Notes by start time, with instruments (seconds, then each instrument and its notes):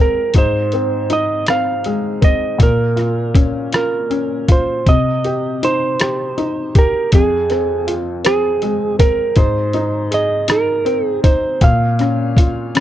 Already playing: felt piano F2 G#3 C4 F4
0.01 electric slide guitar A#4
0.34 felt piano G#2, kick, closed hi-hat
0.38 electric slide guitar C5
0.72 felt piano C4, closed hi-hat
1.10 felt piano D#4, electric slide guitar D#5, closed hi-hat
1.47 felt piano C4, electric slide guitar F5, cross-stick, closed hi-hat
1.84 felt piano G#3, closed hi-hat
2.21 felt piano C4, electric slide guitar D#5, kick, closed hi-hat
2.58 felt piano A#2, kick, closed hi-hat
2.63 electric slide guitar A#4
2.96 felt piano F4, cross-stick, closed hi-hat
3.34 felt piano C#4, kick, closed hi-hat
3.72 felt piano F4, electric slide guitar A#4, cross-stick, closed hi-hat
4.10 felt piano C#4, closed hi-hat
4.48 felt piano F4, electric slide guitar C5, kick, closed hi-hat
4.86 felt piano C3, electric slide guitar D#5, kick, closed hi-hat
5.24 felt piano G4, closed hi-hat
5.63 felt piano D#4, electric slide guitar C5, closed hi-hat
6.00 felt piano G4, cross-stick, closed hi-hat
6.38 felt piano D#4, closed hi-hat
6.75 felt piano G4, electric slide guitar A#4, kick, closed hi-hat
7.12 felt piano F2, electric slide guitar G#4, kick, closed hi-hat
7.50 felt piano C4, cross-stick, closed hi-hat
7.87 felt piano F4, closed hi-hat
8.24 felt piano C4, electric slide guitar G#4, cross-stick, closed hi-hat
8.62 felt piano G#3, closed hi-hat
8.99 felt piano C4, electric slide guitar A#4, kick, closed hi-hat
9.36 felt piano G#2, electric slide guitar C5, kick, closed hi-hat
9.73 felt piano D#4, closed hi-hat
10.11 felt piano G#4, electric slide guitar D#5, closed hi-hat
10.48 felt piano D#4, electric slide guitar A#4, cross-stick, closed hi-hat
10.85 felt piano C4, closed hi-hat
11.07 electric slide guitar G#4
11.24 felt piano D#4, electric slide guitar C5, kick, closed hi-hat
11.61 felt piano A#2, electric slide guitar F5, kick, closed hi-hat
11.99 felt piano C#4, cross-stick, closed hi-hat
12.37 felt piano F4, kick, closed hi-hat
12.75 felt piano C#4, cross-stick, closed hi-hat